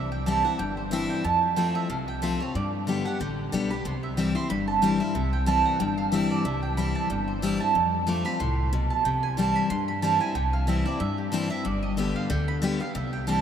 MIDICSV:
0, 0, Header, 1, 4, 480
1, 0, Start_track
1, 0, Key_signature, 0, "major"
1, 0, Tempo, 325203
1, 1842, Time_signature, 4, 2, 24, 8
1, 19798, End_track
2, 0, Start_track
2, 0, Title_t, "Mandolin"
2, 0, Program_c, 0, 25
2, 0, Note_on_c, 0, 76, 80
2, 167, Note_off_c, 0, 76, 0
2, 173, Note_on_c, 0, 79, 94
2, 384, Note_off_c, 0, 79, 0
2, 390, Note_on_c, 0, 81, 107
2, 653, Note_off_c, 0, 81, 0
2, 660, Note_on_c, 0, 78, 100
2, 864, Note_off_c, 0, 78, 0
2, 870, Note_on_c, 0, 79, 100
2, 1134, Note_off_c, 0, 79, 0
2, 1137, Note_on_c, 0, 72, 74
2, 1350, Note_off_c, 0, 72, 0
2, 1351, Note_on_c, 0, 76, 74
2, 1614, Note_off_c, 0, 76, 0
2, 1620, Note_on_c, 0, 79, 92
2, 1829, Note_off_c, 0, 79, 0
2, 1835, Note_on_c, 0, 81, 99
2, 2285, Note_off_c, 0, 81, 0
2, 2315, Note_on_c, 0, 79, 95
2, 2577, Note_off_c, 0, 79, 0
2, 2584, Note_on_c, 0, 76, 107
2, 2793, Note_off_c, 0, 76, 0
2, 2799, Note_on_c, 0, 77, 85
2, 3060, Note_off_c, 0, 77, 0
2, 3068, Note_on_c, 0, 79, 104
2, 3277, Note_off_c, 0, 79, 0
2, 3283, Note_on_c, 0, 76, 86
2, 3543, Note_off_c, 0, 76, 0
2, 3547, Note_on_c, 0, 73, 95
2, 3757, Note_off_c, 0, 73, 0
2, 3765, Note_on_c, 0, 74, 84
2, 3925, Note_off_c, 0, 74, 0
2, 4506, Note_on_c, 0, 78, 97
2, 4716, Note_off_c, 0, 78, 0
2, 4722, Note_on_c, 0, 79, 87
2, 5418, Note_off_c, 0, 79, 0
2, 5467, Note_on_c, 0, 83, 100
2, 5675, Note_off_c, 0, 83, 0
2, 5681, Note_on_c, 0, 84, 94
2, 5942, Note_off_c, 0, 84, 0
2, 5950, Note_on_c, 0, 76, 82
2, 6155, Note_off_c, 0, 76, 0
2, 6161, Note_on_c, 0, 79, 89
2, 6420, Note_off_c, 0, 79, 0
2, 6426, Note_on_c, 0, 84, 124
2, 6631, Note_off_c, 0, 84, 0
2, 6637, Note_on_c, 0, 83, 99
2, 6896, Note_off_c, 0, 83, 0
2, 6902, Note_on_c, 0, 81, 93
2, 7112, Note_off_c, 0, 81, 0
2, 7118, Note_on_c, 0, 79, 81
2, 7378, Note_off_c, 0, 79, 0
2, 7384, Note_on_c, 0, 77, 95
2, 7590, Note_off_c, 0, 77, 0
2, 7596, Note_on_c, 0, 76, 75
2, 7858, Note_off_c, 0, 76, 0
2, 7864, Note_on_c, 0, 79, 94
2, 8073, Note_off_c, 0, 79, 0
2, 8079, Note_on_c, 0, 81, 117
2, 8338, Note_off_c, 0, 81, 0
2, 8344, Note_on_c, 0, 78, 111
2, 8554, Note_off_c, 0, 78, 0
2, 8559, Note_on_c, 0, 79, 95
2, 8816, Note_off_c, 0, 79, 0
2, 8821, Note_on_c, 0, 77, 96
2, 9031, Note_off_c, 0, 77, 0
2, 9037, Note_on_c, 0, 76, 86
2, 9299, Note_off_c, 0, 76, 0
2, 9305, Note_on_c, 0, 74, 98
2, 9516, Note_off_c, 0, 74, 0
2, 9519, Note_on_c, 0, 76, 77
2, 9774, Note_off_c, 0, 76, 0
2, 9780, Note_on_c, 0, 79, 91
2, 9993, Note_off_c, 0, 79, 0
2, 9998, Note_on_c, 0, 83, 109
2, 10255, Note_off_c, 0, 83, 0
2, 10261, Note_on_c, 0, 81, 106
2, 10468, Note_off_c, 0, 81, 0
2, 10474, Note_on_c, 0, 79, 82
2, 10737, Note_off_c, 0, 79, 0
2, 10741, Note_on_c, 0, 72, 78
2, 10953, Note_off_c, 0, 72, 0
2, 10955, Note_on_c, 0, 76, 74
2, 11215, Note_off_c, 0, 76, 0
2, 11221, Note_on_c, 0, 81, 107
2, 11870, Note_off_c, 0, 81, 0
2, 11915, Note_on_c, 0, 86, 103
2, 12177, Note_off_c, 0, 86, 0
2, 12183, Note_on_c, 0, 83, 119
2, 12388, Note_off_c, 0, 83, 0
2, 12394, Note_on_c, 0, 84, 103
2, 13091, Note_off_c, 0, 84, 0
2, 13142, Note_on_c, 0, 81, 96
2, 13348, Note_off_c, 0, 81, 0
2, 13354, Note_on_c, 0, 79, 74
2, 13615, Note_off_c, 0, 79, 0
2, 13622, Note_on_c, 0, 80, 94
2, 13830, Note_off_c, 0, 80, 0
2, 13836, Note_on_c, 0, 81, 99
2, 14096, Note_off_c, 0, 81, 0
2, 14104, Note_on_c, 0, 83, 115
2, 14310, Note_off_c, 0, 83, 0
2, 14316, Note_on_c, 0, 84, 111
2, 14576, Note_off_c, 0, 84, 0
2, 14584, Note_on_c, 0, 83, 95
2, 14788, Note_off_c, 0, 83, 0
2, 14794, Note_on_c, 0, 81, 95
2, 15055, Note_off_c, 0, 81, 0
2, 15062, Note_on_c, 0, 80, 110
2, 15270, Note_off_c, 0, 80, 0
2, 15276, Note_on_c, 0, 79, 87
2, 15536, Note_off_c, 0, 79, 0
2, 15544, Note_on_c, 0, 77, 96
2, 15752, Note_off_c, 0, 77, 0
2, 15760, Note_on_c, 0, 76, 91
2, 16018, Note_off_c, 0, 76, 0
2, 16024, Note_on_c, 0, 74, 107
2, 16232, Note_off_c, 0, 74, 0
2, 16233, Note_on_c, 0, 76, 94
2, 16494, Note_off_c, 0, 76, 0
2, 16499, Note_on_c, 0, 67, 61
2, 16710, Note_off_c, 0, 67, 0
2, 16715, Note_on_c, 0, 72, 79
2, 16975, Note_off_c, 0, 72, 0
2, 16978, Note_on_c, 0, 76, 121
2, 17189, Note_off_c, 0, 76, 0
2, 17192, Note_on_c, 0, 74, 81
2, 17450, Note_off_c, 0, 74, 0
2, 17455, Note_on_c, 0, 75, 95
2, 17668, Note_off_c, 0, 75, 0
2, 17676, Note_on_c, 0, 76, 89
2, 17936, Note_off_c, 0, 76, 0
2, 17944, Note_on_c, 0, 77, 108
2, 18152, Note_off_c, 0, 77, 0
2, 18161, Note_on_c, 0, 79, 90
2, 18414, Note_off_c, 0, 79, 0
2, 18420, Note_on_c, 0, 83, 109
2, 18550, Note_off_c, 0, 83, 0
2, 18901, Note_on_c, 0, 77, 96
2, 19108, Note_off_c, 0, 77, 0
2, 19114, Note_on_c, 0, 76, 79
2, 19371, Note_off_c, 0, 76, 0
2, 19377, Note_on_c, 0, 79, 97
2, 19584, Note_off_c, 0, 79, 0
2, 19590, Note_on_c, 0, 81, 113
2, 19798, Note_off_c, 0, 81, 0
2, 19798, End_track
3, 0, Start_track
3, 0, Title_t, "Steel-string acoustic guitar"
3, 0, Program_c, 1, 25
3, 0, Note_on_c, 1, 48, 79
3, 388, Note_on_c, 1, 52, 81
3, 399, Note_on_c, 1, 55, 81
3, 408, Note_on_c, 1, 60, 81
3, 417, Note_on_c, 1, 64, 95
3, 637, Note_off_c, 1, 64, 0
3, 649, Note_off_c, 1, 52, 0
3, 654, Note_on_c, 1, 64, 57
3, 655, Note_off_c, 1, 55, 0
3, 660, Note_off_c, 1, 60, 0
3, 685, Note_on_c, 1, 60, 46
3, 835, Note_off_c, 1, 48, 0
3, 866, Note_off_c, 1, 64, 0
3, 874, Note_on_c, 1, 43, 87
3, 881, Note_off_c, 1, 60, 0
3, 1344, Note_on_c, 1, 52, 87
3, 1357, Note_on_c, 1, 55, 86
3, 1368, Note_on_c, 1, 60, 104
3, 1374, Note_on_c, 1, 64, 106
3, 1796, Note_off_c, 1, 43, 0
3, 1813, Note_off_c, 1, 52, 0
3, 1819, Note_off_c, 1, 55, 0
3, 1824, Note_off_c, 1, 60, 0
3, 1827, Note_off_c, 1, 64, 0
3, 1838, Note_on_c, 1, 41, 83
3, 2308, Note_on_c, 1, 53, 87
3, 2320, Note_on_c, 1, 57, 87
3, 2330, Note_on_c, 1, 60, 90
3, 2338, Note_on_c, 1, 65, 92
3, 2759, Note_off_c, 1, 41, 0
3, 2775, Note_off_c, 1, 53, 0
3, 2781, Note_off_c, 1, 57, 0
3, 2786, Note_off_c, 1, 60, 0
3, 2790, Note_off_c, 1, 65, 0
3, 2800, Note_on_c, 1, 48, 85
3, 3275, Note_on_c, 1, 53, 86
3, 3283, Note_on_c, 1, 57, 83
3, 3294, Note_on_c, 1, 60, 90
3, 3301, Note_on_c, 1, 65, 101
3, 3530, Note_off_c, 1, 65, 0
3, 3536, Note_off_c, 1, 53, 0
3, 3540, Note_off_c, 1, 57, 0
3, 3545, Note_off_c, 1, 60, 0
3, 3548, Note_on_c, 1, 65, 57
3, 3577, Note_on_c, 1, 60, 49
3, 3721, Note_off_c, 1, 48, 0
3, 3755, Note_off_c, 1, 65, 0
3, 3769, Note_on_c, 1, 43, 85
3, 3770, Note_off_c, 1, 60, 0
3, 4236, Note_on_c, 1, 50, 79
3, 4250, Note_on_c, 1, 55, 82
3, 4259, Note_on_c, 1, 59, 80
3, 4266, Note_on_c, 1, 67, 87
3, 4491, Note_off_c, 1, 67, 0
3, 4497, Note_off_c, 1, 50, 0
3, 4504, Note_off_c, 1, 55, 0
3, 4508, Note_off_c, 1, 59, 0
3, 4509, Note_on_c, 1, 67, 54
3, 4538, Note_on_c, 1, 59, 47
3, 4685, Note_off_c, 1, 43, 0
3, 4716, Note_off_c, 1, 67, 0
3, 4731, Note_off_c, 1, 59, 0
3, 4733, Note_on_c, 1, 50, 84
3, 5183, Note_off_c, 1, 50, 0
3, 5201, Note_on_c, 1, 50, 87
3, 5211, Note_on_c, 1, 55, 88
3, 5218, Note_on_c, 1, 59, 93
3, 5228, Note_on_c, 1, 67, 97
3, 5453, Note_off_c, 1, 67, 0
3, 5459, Note_off_c, 1, 50, 0
3, 5464, Note_off_c, 1, 55, 0
3, 5468, Note_off_c, 1, 59, 0
3, 5470, Note_on_c, 1, 67, 56
3, 5495, Note_on_c, 1, 59, 43
3, 5677, Note_off_c, 1, 67, 0
3, 5687, Note_on_c, 1, 48, 83
3, 5690, Note_off_c, 1, 59, 0
3, 6158, Note_on_c, 1, 52, 80
3, 6168, Note_on_c, 1, 55, 87
3, 6178, Note_on_c, 1, 60, 80
3, 6187, Note_on_c, 1, 64, 81
3, 6399, Note_off_c, 1, 64, 0
3, 6417, Note_on_c, 1, 64, 60
3, 6418, Note_off_c, 1, 52, 0
3, 6423, Note_off_c, 1, 55, 0
3, 6428, Note_off_c, 1, 60, 0
3, 6443, Note_on_c, 1, 60, 47
3, 6604, Note_off_c, 1, 48, 0
3, 6630, Note_off_c, 1, 64, 0
3, 6642, Note_on_c, 1, 43, 89
3, 6644, Note_off_c, 1, 60, 0
3, 7113, Note_on_c, 1, 52, 90
3, 7122, Note_on_c, 1, 55, 100
3, 7132, Note_on_c, 1, 60, 92
3, 7140, Note_on_c, 1, 64, 102
3, 7361, Note_off_c, 1, 64, 0
3, 7376, Note_off_c, 1, 52, 0
3, 7379, Note_on_c, 1, 64, 62
3, 7380, Note_off_c, 1, 55, 0
3, 7385, Note_off_c, 1, 60, 0
3, 7406, Note_on_c, 1, 60, 48
3, 7561, Note_off_c, 1, 43, 0
3, 7591, Note_off_c, 1, 64, 0
3, 7601, Note_on_c, 1, 48, 80
3, 7605, Note_off_c, 1, 60, 0
3, 8065, Note_on_c, 1, 52, 92
3, 8077, Note_on_c, 1, 55, 85
3, 8086, Note_on_c, 1, 60, 93
3, 8093, Note_on_c, 1, 64, 83
3, 8521, Note_off_c, 1, 48, 0
3, 8534, Note_off_c, 1, 52, 0
3, 8540, Note_off_c, 1, 55, 0
3, 8545, Note_off_c, 1, 60, 0
3, 8548, Note_off_c, 1, 64, 0
3, 8560, Note_on_c, 1, 43, 95
3, 9030, Note_on_c, 1, 52, 93
3, 9040, Note_on_c, 1, 55, 89
3, 9052, Note_on_c, 1, 60, 91
3, 9061, Note_on_c, 1, 64, 105
3, 9479, Note_off_c, 1, 43, 0
3, 9496, Note_off_c, 1, 52, 0
3, 9501, Note_off_c, 1, 55, 0
3, 9507, Note_off_c, 1, 60, 0
3, 9512, Note_off_c, 1, 64, 0
3, 9520, Note_on_c, 1, 48, 83
3, 9995, Note_on_c, 1, 52, 77
3, 10006, Note_on_c, 1, 55, 89
3, 10014, Note_on_c, 1, 60, 75
3, 10023, Note_on_c, 1, 64, 95
3, 10439, Note_off_c, 1, 48, 0
3, 10458, Note_off_c, 1, 52, 0
3, 10464, Note_off_c, 1, 55, 0
3, 10468, Note_off_c, 1, 60, 0
3, 10472, Note_off_c, 1, 64, 0
3, 10478, Note_on_c, 1, 43, 85
3, 10957, Note_on_c, 1, 52, 92
3, 10966, Note_on_c, 1, 55, 99
3, 10978, Note_on_c, 1, 60, 95
3, 10985, Note_on_c, 1, 64, 113
3, 11194, Note_off_c, 1, 64, 0
3, 11212, Note_on_c, 1, 64, 53
3, 11216, Note_off_c, 1, 52, 0
3, 11220, Note_off_c, 1, 55, 0
3, 11226, Note_off_c, 1, 60, 0
3, 11242, Note_on_c, 1, 60, 50
3, 11397, Note_off_c, 1, 43, 0
3, 11426, Note_off_c, 1, 64, 0
3, 11440, Note_on_c, 1, 41, 79
3, 11441, Note_off_c, 1, 60, 0
3, 11907, Note_on_c, 1, 53, 78
3, 11919, Note_on_c, 1, 57, 84
3, 11927, Note_on_c, 1, 60, 86
3, 11936, Note_on_c, 1, 65, 93
3, 12157, Note_off_c, 1, 65, 0
3, 12170, Note_off_c, 1, 53, 0
3, 12174, Note_on_c, 1, 65, 67
3, 12176, Note_off_c, 1, 57, 0
3, 12180, Note_off_c, 1, 60, 0
3, 12206, Note_on_c, 1, 60, 48
3, 12358, Note_off_c, 1, 41, 0
3, 12387, Note_off_c, 1, 65, 0
3, 12400, Note_on_c, 1, 45, 92
3, 12403, Note_off_c, 1, 60, 0
3, 12860, Note_off_c, 1, 45, 0
3, 12881, Note_on_c, 1, 47, 86
3, 13340, Note_off_c, 1, 47, 0
3, 13361, Note_on_c, 1, 48, 77
3, 13832, Note_on_c, 1, 52, 78
3, 13846, Note_on_c, 1, 55, 87
3, 13855, Note_on_c, 1, 60, 83
3, 13861, Note_on_c, 1, 64, 101
3, 14278, Note_off_c, 1, 48, 0
3, 14295, Note_off_c, 1, 52, 0
3, 14302, Note_off_c, 1, 55, 0
3, 14307, Note_off_c, 1, 60, 0
3, 14309, Note_off_c, 1, 64, 0
3, 14320, Note_on_c, 1, 43, 89
3, 14796, Note_on_c, 1, 52, 93
3, 14805, Note_on_c, 1, 55, 95
3, 14816, Note_on_c, 1, 60, 93
3, 14824, Note_on_c, 1, 64, 96
3, 15042, Note_off_c, 1, 64, 0
3, 15053, Note_off_c, 1, 52, 0
3, 15058, Note_off_c, 1, 55, 0
3, 15060, Note_on_c, 1, 64, 58
3, 15063, Note_off_c, 1, 60, 0
3, 15087, Note_on_c, 1, 60, 47
3, 15237, Note_off_c, 1, 43, 0
3, 15268, Note_off_c, 1, 64, 0
3, 15279, Note_on_c, 1, 48, 81
3, 15282, Note_off_c, 1, 60, 0
3, 15749, Note_on_c, 1, 52, 72
3, 15762, Note_on_c, 1, 55, 78
3, 15773, Note_on_c, 1, 60, 78
3, 15781, Note_on_c, 1, 64, 90
3, 16004, Note_off_c, 1, 64, 0
3, 16010, Note_off_c, 1, 52, 0
3, 16016, Note_off_c, 1, 55, 0
3, 16022, Note_off_c, 1, 60, 0
3, 16022, Note_on_c, 1, 64, 61
3, 16048, Note_on_c, 1, 60, 53
3, 16196, Note_off_c, 1, 48, 0
3, 16229, Note_off_c, 1, 64, 0
3, 16236, Note_on_c, 1, 43, 86
3, 16242, Note_off_c, 1, 60, 0
3, 16704, Note_on_c, 1, 52, 91
3, 16717, Note_on_c, 1, 55, 95
3, 16729, Note_on_c, 1, 60, 110
3, 16735, Note_on_c, 1, 64, 103
3, 16952, Note_off_c, 1, 64, 0
3, 16967, Note_off_c, 1, 52, 0
3, 16970, Note_on_c, 1, 64, 62
3, 16974, Note_off_c, 1, 55, 0
3, 16979, Note_off_c, 1, 60, 0
3, 16999, Note_on_c, 1, 60, 49
3, 17155, Note_off_c, 1, 43, 0
3, 17183, Note_off_c, 1, 64, 0
3, 17193, Note_on_c, 1, 43, 88
3, 17197, Note_off_c, 1, 60, 0
3, 17669, Note_on_c, 1, 50, 89
3, 17683, Note_on_c, 1, 55, 85
3, 17688, Note_on_c, 1, 59, 90
3, 17697, Note_on_c, 1, 67, 89
3, 18113, Note_off_c, 1, 43, 0
3, 18132, Note_off_c, 1, 50, 0
3, 18139, Note_off_c, 1, 55, 0
3, 18142, Note_off_c, 1, 59, 0
3, 18146, Note_off_c, 1, 67, 0
3, 18151, Note_on_c, 1, 50, 94
3, 18605, Note_off_c, 1, 50, 0
3, 18622, Note_on_c, 1, 50, 98
3, 18637, Note_on_c, 1, 55, 93
3, 18646, Note_on_c, 1, 59, 92
3, 18653, Note_on_c, 1, 67, 99
3, 18874, Note_off_c, 1, 67, 0
3, 18886, Note_off_c, 1, 50, 0
3, 18892, Note_on_c, 1, 67, 62
3, 18893, Note_off_c, 1, 55, 0
3, 18898, Note_off_c, 1, 59, 0
3, 18919, Note_on_c, 1, 59, 49
3, 19104, Note_off_c, 1, 67, 0
3, 19113, Note_on_c, 1, 48, 88
3, 19117, Note_off_c, 1, 59, 0
3, 19586, Note_on_c, 1, 52, 80
3, 19595, Note_on_c, 1, 55, 86
3, 19608, Note_on_c, 1, 60, 91
3, 19614, Note_on_c, 1, 64, 96
3, 19798, Note_off_c, 1, 48, 0
3, 19798, Note_off_c, 1, 52, 0
3, 19798, Note_off_c, 1, 55, 0
3, 19798, Note_off_c, 1, 60, 0
3, 19798, Note_off_c, 1, 64, 0
3, 19798, End_track
4, 0, Start_track
4, 0, Title_t, "Upright bass"
4, 0, Program_c, 2, 32
4, 0, Note_on_c, 2, 36, 84
4, 609, Note_off_c, 2, 36, 0
4, 881, Note_on_c, 2, 31, 88
4, 1577, Note_off_c, 2, 31, 0
4, 1840, Note_on_c, 2, 41, 85
4, 2537, Note_off_c, 2, 41, 0
4, 2797, Note_on_c, 2, 36, 88
4, 3496, Note_off_c, 2, 36, 0
4, 3763, Note_on_c, 2, 43, 81
4, 4459, Note_off_c, 2, 43, 0
4, 4730, Note_on_c, 2, 33, 85
4, 5136, Note_off_c, 2, 33, 0
4, 5208, Note_on_c, 2, 35, 88
4, 5616, Note_off_c, 2, 35, 0
4, 5687, Note_on_c, 2, 36, 82
4, 6381, Note_off_c, 2, 36, 0
4, 6646, Note_on_c, 2, 31, 84
4, 7341, Note_off_c, 2, 31, 0
4, 7599, Note_on_c, 2, 36, 81
4, 8296, Note_off_c, 2, 36, 0
4, 8562, Note_on_c, 2, 31, 90
4, 9258, Note_off_c, 2, 31, 0
4, 9524, Note_on_c, 2, 36, 91
4, 10219, Note_off_c, 2, 36, 0
4, 10479, Note_on_c, 2, 31, 87
4, 11175, Note_off_c, 2, 31, 0
4, 11445, Note_on_c, 2, 41, 88
4, 12138, Note_off_c, 2, 41, 0
4, 12404, Note_on_c, 2, 36, 84
4, 13098, Note_off_c, 2, 36, 0
4, 13356, Note_on_c, 2, 36, 84
4, 14053, Note_off_c, 2, 36, 0
4, 14320, Note_on_c, 2, 43, 88
4, 15014, Note_off_c, 2, 43, 0
4, 15278, Note_on_c, 2, 36, 84
4, 15973, Note_off_c, 2, 36, 0
4, 16238, Note_on_c, 2, 43, 90
4, 16933, Note_off_c, 2, 43, 0
4, 17199, Note_on_c, 2, 31, 83
4, 17894, Note_off_c, 2, 31, 0
4, 18154, Note_on_c, 2, 38, 87
4, 18850, Note_off_c, 2, 38, 0
4, 19117, Note_on_c, 2, 36, 88
4, 19798, Note_off_c, 2, 36, 0
4, 19798, End_track
0, 0, End_of_file